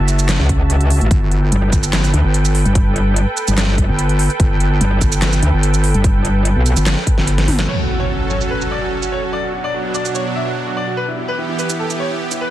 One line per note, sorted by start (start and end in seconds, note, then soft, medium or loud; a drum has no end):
0.00 0.38 F#1 loud
0.00 1.07 F#4 medium
0.00 1.07 E5 medium
0.00 1.07 A5 medium
0.08 closed hi-hat medium
0.08 shaker medium
0.19 shaker medium
0.29 snare loud
0.29 clap medium
0.29 closed hi-hat medium
0.29 shaker medium
0.40 0.99 C#2 loud
0.49 kick medium
0.49 closed hi-hat medium
0.70 closed hi-hat medium
0.81 closed hi-hat soft
0.90 open hi-hat medium
1.01 1.09 A1 loud
1.01 closed hi-hat soft
1.11 1.50 G1 loud
1.11 7.64 A4 medium
1.11 7.65 B4 medium
1.11 7.64 G5 medium
1.11 kick loud
1.11 closed hi-hat medium
1.32 closed hi-hat medium
1.52 1.71 G1 medium
1.52 closed hi-hat medium
1.72 2.12 G1 loud
1.72 kick medium
1.72 closed hi-hat medium
1.72 shaker medium
1.83 shaker medium
1.93 snare loud
1.93 clap medium
1.93 closed hi-hat medium
2.04 shaker medium
2.14 2.23 D2 loud
2.14 closed hi-hat medium
2.24 2.64 G1 loud
2.34 closed hi-hat medium
2.45 closed hi-hat soft
2.45 shaker medium
2.55 open hi-hat medium
2.65 3.25 G1 loud
2.65 closed hi-hat soft
2.75 kick loud
2.75 closed hi-hat medium
2.96 closed hi-hat medium
3.16 closed hi-hat medium
3.37 closed hi-hat medium
3.37 shaker medium
3.48 3.87 G1 loud
3.48 shaker medium
3.58 snare loud
3.58 clap medium
3.58 closed hi-hat medium
3.58 shaker medium
3.78 kick medium
3.78 closed hi-hat medium
3.89 4.28 G1 loud
3.99 closed hi-hat medium
4.09 closed hi-hat soft
4.19 open hi-hat loud
4.30 closed hi-hat soft
4.40 4.79 G1 loud
4.40 kick loud
4.40 closed hi-hat medium
4.60 closed hi-hat medium
4.81 5.00 G1 loud
4.81 closed hi-hat medium
5.01 5.41 G1 loud
5.01 kick medium
5.01 closed hi-hat medium
5.01 shaker medium
5.12 shaker medium
5.22 snare loud
5.22 clap medium
5.22 closed hi-hat medium
5.33 shaker medium
5.43 5.52 D2 medium
5.43 closed hi-hat medium
5.53 5.93 G1 loud
5.63 closed hi-hat medium
5.74 closed hi-hat soft
5.74 shaker medium
5.84 open hi-hat loud
5.94 6.54 G1 loud
5.94 closed hi-hat soft
6.04 kick loud
6.04 closed hi-hat medium
6.25 closed hi-hat medium
6.45 closed hi-hat medium
6.56 6.75 B1 loud
6.66 closed hi-hat medium
6.66 shaker medium
6.76 6.95 G1 loud
6.76 shaker medium
6.86 snare loud
6.86 clap medium
6.86 closed hi-hat medium
6.86 shaker soft
7.07 kick medium
7.07 closed hi-hat medium
7.18 7.46 G1 loud
7.18 snare soft
7.27 closed hi-hat medium
7.38 snare medium
7.38 closed hi-hat soft
7.48 7.67 G1 loud
7.48 open hi-hat loud
7.48 mid tom medium
7.59 snare medium
7.68 9.31 F#3 medium
7.68 9.31 C#4 medium
7.68 9.31 A4 medium
7.68 7.77 C#5 medium
7.68 crash medium
7.68 impact medium
7.79 7.87 F#4 medium
7.89 7.98 F#4 medium
8.00 8.08 C#5 medium
8.09 8.18 F#4 medium
8.20 8.28 F#4 medium
8.30 8.39 C#5 medium
8.30 shaker soft
8.41 8.49 F#4 medium
8.41 shaker medium
8.51 8.60 B4 medium
8.61 8.70 F#4 medium
8.61 shaker soft
8.71 8.80 D5 medium
8.82 8.90 F#4 medium
9.02 9.11 F#4 medium
9.02 shaker soft
9.12 9.21 C#5 medium
9.23 9.31 F#4 medium
9.33 10.96 B2 medium
9.33 10.96 F#3 medium
9.33 10.96 D4 medium
9.33 9.42 D5 medium
9.44 9.52 F#4 medium
9.53 9.62 F#4 medium
9.64 9.72 D5 medium
9.74 9.83 F#4 medium
9.85 9.93 F#4 medium
9.94 10.03 D5 medium
9.94 shaker soft
10.05 10.13 F#4 medium
10.05 shaker medium
10.15 10.24 C#5 medium
10.15 shaker soft
10.26 10.34 F#4 medium
10.35 10.44 E5 medium
10.46 10.54 F#4 medium
10.67 10.75 F#4 medium
10.77 10.86 D5 medium
10.87 10.96 F#4 medium
10.97 12.50 E3 medium
10.97 12.50 B3 medium
10.97 12.50 G4 medium
10.97 11.06 B4 medium
11.08 11.16 E4 medium
11.18 11.27 E4 medium
11.28 11.37 B4 medium
11.38 11.47 E4 medium
11.49 11.57 E4 medium
11.59 11.68 B4 medium
11.59 shaker soft
11.69 11.78 E4 medium
11.69 shaker medium
11.79 11.88 A4 medium
11.90 11.98 E4 medium
11.90 shaker soft
12.00 12.09 C#5 medium
12.11 12.19 E4 medium
12.31 12.39 E4 medium
12.31 shaker medium
12.41 12.50 B4 medium